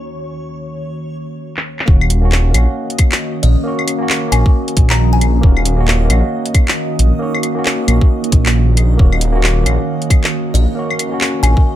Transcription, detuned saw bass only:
1.88 D#1
2.55 A#1
3.44 A#1
4.32 A#1
4.77 A#1
5.43 D#1
6.10 A#1
6.99 A#1
7.88 A#1
8.32 A#1
8.99 D#1
9.66 A#1
10.54 A#1
11.43 A#1

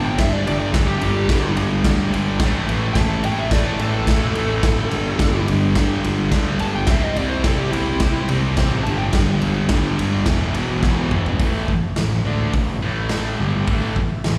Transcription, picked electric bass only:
Already playing: G1
0.19 G1
0.47 G1
0.74 G1
1.02 G1
1.29 G2
1.56 G1
1.84 D2
2.13 G1
2.39 A1
2.68 A1
2.95 A1
3.23 A1
3.51 A2
3.79 A1
4.07 E1
4.35 A1
4.63 G1
4.91 G1
5.19 G1
5.48 G1
5.76 G2
6.04 G1
6.31 D2
6.61 G1
6.87 C2
7.16 C2
7.44 C2
7.73 C2
8.00 C3
8.29 C2
8.57 A1
8.86 G1
9.13 G1
9.43 G1
9.69 G1
9.98 G1
10.26 E1
10.55 E1
10.82 B1
11.12 E1
11.39 A1
11.68 muted picked electric bass stroke
11.97 A1
12.25 D2
12.53 A1
12.82 A1
13.39 G1
13.68 A1
13.96 muted picked electric bass stroke
14.25 A1

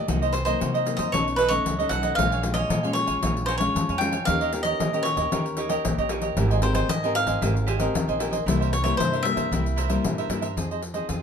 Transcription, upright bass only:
0.08 C2
0.61 C3
0.98 F#2
1.14 B1
1.66 C#2
1.90 B1
2.18 A#1
2.70 A#2
3.08 A#1
3.22 A#1
3.75 F2
3.89 F2
4.28 D#2
4.80 D#3
5.17 D#2
5.32 D#2
5.85 A#1
5.98 A#1
6.37 G#1
6.89 G#2
7.26 G#1
7.42 G#1
7.94 D#2
8.08 A#1
8.46 C2
8.99 C3
9.37 C2
9.52 C2
10.04 A#2
10.29 G2
10.57 F2
11.09 F2

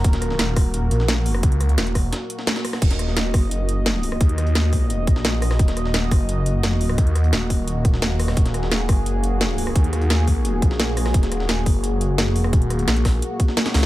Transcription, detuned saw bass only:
0.04 D#1
0.39 D#1
0.91 A#1
1.43 C#2
1.78 E1
2.82 D#1
3.17 D#1
3.34 F#1
4.21 D#2
5.07 A#1
5.59 D#1
5.94 D#1
6.11 F#1
6.98 D#2
7.33 D#1
8.37 D#1
8.72 D#1
8.89 F#1
9.76 D#2
10.62 A#1
11.14 D#1
11.49 D#1
11.66 F#1
12.26 F1
12.53 D#1
12.88 A#1
13.74 C#2

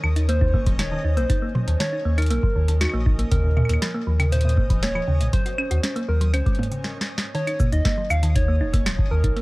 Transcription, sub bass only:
0.04 D#2
0.54 D#1
1.04 D#2
1.17 A#1
1.67 D#2
2.05 D#2
2.31 A#1
2.56 D#2
2.94 A#1
3.31 D#2
3.69 D#2
4.07 D#2
4.57 D#1
5.08 D#2
5.20 A#1
5.71 D#2
6.09 D#2
6.34 C#2
7.73 D#2
8.10 D#2
8.61 D#1
9.11 D#2
9.24 A#1

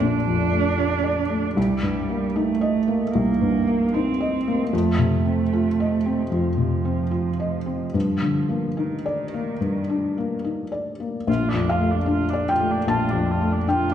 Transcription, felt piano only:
Already playing: F2 A3 F4 D5
0.00 A#1
0.27 F2
0.52 A3
0.78 F4
1.04 D5
1.30 A3
1.57 C2
1.83 G2
2.09 A#3
2.36 D#4
2.61 D#5
2.88 A#3
3.15 C2
3.41 G2
3.67 A#3
3.94 D#4
4.21 D#5
4.48 A#3
4.73 F2
4.99 C3
5.25 C4
5.53 F4
5.80 D#5
6.06 C4
6.31 F2
6.58 C3
6.85 C4
7.11 F4
7.40 D#5
7.66 C4
7.94 G2
8.22 D3
8.49 A#3
8.77 D#4
9.06 D5
9.34 A#3
9.60 G2
9.89 D4
10.18 A#3
10.44 D#4
10.72 D5
11.00 A#3
11.27 A#1
11.54 F2
11.69 F5
11.81 A3
12.06 D4
12.33 D5
12.49 G5
12.60 A3
12.87 A#1 A5
13.13 F2
13.41 A3
13.67 D4 G5

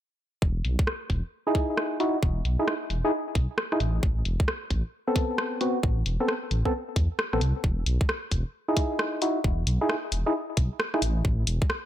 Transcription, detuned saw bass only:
0.42 E1
0.65 B1
1.10 E1
2.23 E1
2.45 B1
2.90 E1
3.35 B1
3.80 A1
4.03 A1
4.25 E1
4.71 A1
5.83 A1
6.06 E1
6.51 A1
6.96 E2
7.33 A1
7.41 C2
7.64 E1
7.86 B1
8.32 E1
9.44 E1
9.67 B1
10.12 E1
10.57 B1
11.02 A1
11.25 A1
11.47 E1

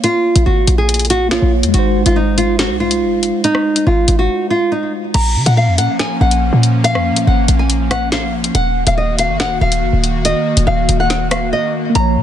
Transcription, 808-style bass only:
0.36 A#1
0.46 G#1
0.67 A#1
1.42 A#1
1.63 F2
1.74 G#1
2.06 G#1
2.70 C2
3.02 G#1
3.87 G#1
4.08 G#1
5.14 A#1
5.36 C#3
5.46 A#2
5.67 F2
5.78 A#2
6.21 A#1
6.53 A#2
6.95 F2
7.11 A#2
7.27 G#1
7.48 A#1
8.55 D#1
8.87 D#1
9.29 F#1
9.45 D#1
9.61 D#1
9.82 F#1
9.93 D#1
10.57 D#1
10.67 D#1
10.89 D#1
11.95 A#1
12.16 C#3

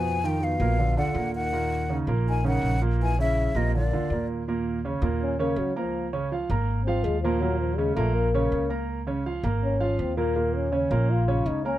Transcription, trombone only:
Already playing: F3
0.25 D#3
0.43 B2
0.98 D3
1.36 D#3
2.27 D#3
2.46 D#3
3.00 E3
3.20 C#3
3.57 C3
3.76 A#2
5.22 C#4
5.40 A#3
5.58 F#3
5.76 F3
6.85 C4
7.04 G#3
7.21 F3
7.40 F#3
7.59 F3
7.77 G#3
7.95 A3
8.14 A#3
9.63 C#4
10.00 C4
10.17 A#3
10.55 C#4
11.10 F4
11.48 D#4
11.65 C#4

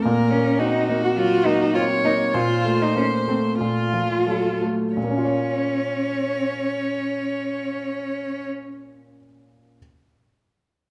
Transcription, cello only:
0.04 A#3
0.31 C#4
0.59 D#4
1.03 F#4
1.18 F4
1.46 D#4
1.75 F4
2.04 D#4
2.34 F4
2.82 D#4
2.97 C#4
3.28 C4
3.60 F4
4.95 C#4

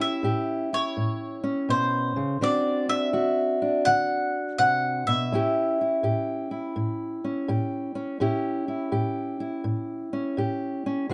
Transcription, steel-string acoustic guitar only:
Already playing: A2 C#4 G4
0.00 E4
0.23 A2 G4
0.73 E4
0.97 A2
1.44 C#4
1.69 B2
2.16 C#3
2.41 D3 C4 D4 F#4
2.89 D4
3.13 D3 F#4
3.62 D4
3.87 D3
4.59 C3
5.08 B2
5.32 A2 C#4 E4 G4
5.81 E4
6.03 A2 G4
6.51 E4
6.76 A2
7.24 C#4
7.48 A2 G4
7.95 C#4
8.20 A2 C#4 E4 G4
8.68 E4
8.92 A2 G4
9.40 E4
9.64 A2
10.13 C#4
10.37 A2 G4
10.86 C#4
11.09 D3 C4

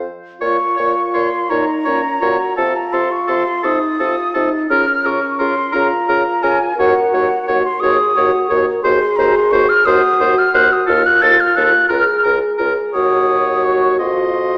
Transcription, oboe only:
0.41 C#5
0.76 C#5
1.14 C#5
1.50 C#5
1.85 C#5
2.22 C#5
2.57 A4
2.93 A4
3.28 A4
3.63 A4
4.00 A4
4.34 A4
4.71 A#4
5.05 A#4
5.39 A#4
5.72 A#4
6.09 A#4
6.43 A#4
6.79 C#5
7.14 C#5
7.48 C#5
7.82 C#5
8.16 C#5
8.50 C#5
8.84 C5
9.19 C5
9.53 C5
9.87 C5
10.20 C5
10.54 C5
10.87 A4
11.21 A4
11.56 A4
11.89 A#4
12.24 A#4
12.58 A#4
12.93 C#5
13.99 D#5

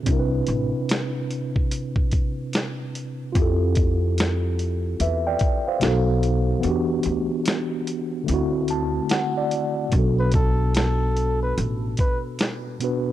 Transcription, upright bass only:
0.07 C2
0.48 A1
3.36 F2
5.00 E2
5.82 B1
6.64 E2
7.06 D2
8.29 D2
9.93 B1
11.58 A1

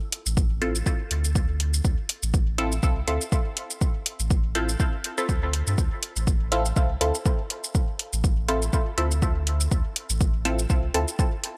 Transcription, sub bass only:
0.26 A1
1.11 D2
1.85 D2
2.23 A1
2.83 C2
3.08 D2
4.20 A1
5.29 D2
5.67 G2
5.78 D2
6.16 A1
6.76 C2
7.01 D2
8.13 A1
8.98 D2
9.71 D2
10.10 A1
10.70 C2
10.94 D2

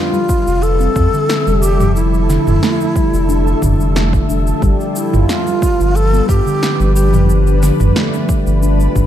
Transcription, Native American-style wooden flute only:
Already playing: F4
0.62 A4
1.62 G4
1.96 E4
4.97 E4
5.30 F4
5.96 A4
6.29 G4
6.95 G4

